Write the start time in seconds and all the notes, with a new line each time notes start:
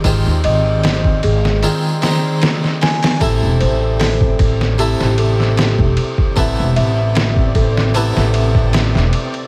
Already playing: C4 G4 G#4 D5
0.04 G#1 D#3 G#3 C4 F4, kick, ride
0.27 D#2
0.44 G#1 D#5, ride
0.83 snare, ride
1.04 kick
1.23 G#1 G#4, ride
1.45 snare
1.63 D#3 G#3 C4 F4, ride
2.02 D#3 G#3 C4 D#4, snare, ride
2.42 snare, ride
2.64 snare
2.81 G#5, snare, open hi-hat
3.03 snare, open hi-hat
3.20 A1 C3 A3 C4 E4 A4 D5, kick, ride
3.43 E1
3.60 A1 C5, ride
3.99 A4, snare, open hi-hat
4.21 kick
4.39 A1, kick, ride
4.61 snare
4.78 C3 A3 E4 G4, ride
5.01 A1, snare
5.18 A4, ride
5.40 snare
5.57 snare, ride
5.79 E1, kick
5.97 ride
6.18 kick
6.36 A1 C3 A3 B3 E4, kick, ride
6.60 E1
6.76 A1 E5, ride
7.15 snare, ride
7.36 kick
7.55 A1 A4, kick, ride
7.77 snare
7.94 C3 A3 B3 E4, ride
8.17 A1, snare
8.34 ride
8.55 kick
8.73 snare, ride
8.95 E1, snare
9.13 ride
9.34 ride